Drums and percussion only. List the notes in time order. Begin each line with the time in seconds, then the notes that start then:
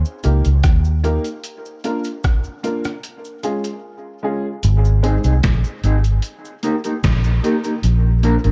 0.05 cabasa
0.23 closed hi-hat, cabasa
0.45 closed hi-hat, cabasa
0.63 kick, cross-stick, closed hi-hat, cabasa
0.84 cabasa
1.04 closed hi-hat, cabasa
1.24 closed hi-hat, cabasa
1.44 closed hi-hat, cabasa
1.65 cabasa
1.84 closed hi-hat, cabasa
2.04 closed hi-hat, cabasa
2.24 kick, cross-stick, closed hi-hat, cabasa
2.44 cabasa
2.64 closed hi-hat, cabasa
2.84 cross-stick, closed hi-hat, cabasa
3.03 closed hi-hat, cabasa
3.25 cabasa
3.43 closed hi-hat, cabasa
3.64 closed hi-hat, cabasa
4.63 closed hi-hat, cabasa
4.85 cabasa
5.04 closed hi-hat, cabasa
5.24 closed hi-hat, cabasa
5.43 kick, snare, closed hi-hat, cabasa
5.64 cabasa
5.84 closed hi-hat, cabasa
6.04 closed hi-hat, cabasa
6.22 closed hi-hat, cabasa
6.45 cabasa
6.63 closed hi-hat, cabasa
6.84 closed hi-hat, cabasa
7.04 kick, snare, closed hi-hat, cabasa
7.24 cabasa
7.44 closed hi-hat, cabasa
7.64 closed hi-hat, cabasa
7.83 closed hi-hat, cabasa
8.23 closed hi-hat
8.44 closed hi-hat